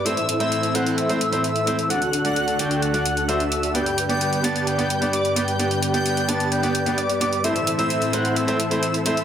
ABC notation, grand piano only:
X:1
M:4/4
L:1/16
Q:1/4=130
K:G
V:1 name="Grand piano"
[A,CEc] z2 [A,CEc]3 [A,CEc]3 [A,CEc] z [A,CEc] z2 [A,CEc] z | [A,DFd] z2 [A,DFd]3 [A,DFd]3 [A,DFd] z2 [A,DFc] z3 | [B,DGd] z2 [B,DGd]3 [B,DGd]3 [B,DGd] z [B,DGd] z2 [B,DGd] z | [B,DGd] z2 [B,DGd]3 [B,DGd]3 [B,DGd] z [B,DGd] z2 [B,DGd] z |
[A,CEc] z2 [A,CEc]3 [A,CEc]3 [A,CEc] z [A,CEc] z2 [A,CEc] z |]